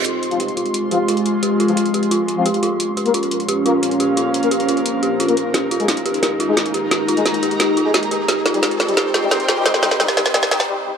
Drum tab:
HH |x-xxxxxxx-x-xxx-|x-xxxxxxx-x-xxx-|x-xxxxxxx-x-xxx-|x-xxxxxxx-x-xxx-|
SD |----------------|----------------|----------------|----------------|

HH |x-xxxxxxx-x-xxx-|x-xxxxxxx-x-xxx-|x-xxxxxxx-x-xxx-|x-xxxxxxx-x-----|
SD |o---o---o---o---|o---o---o---o---|o-o-o-o-o-o-o-o-|oooooooooooo----|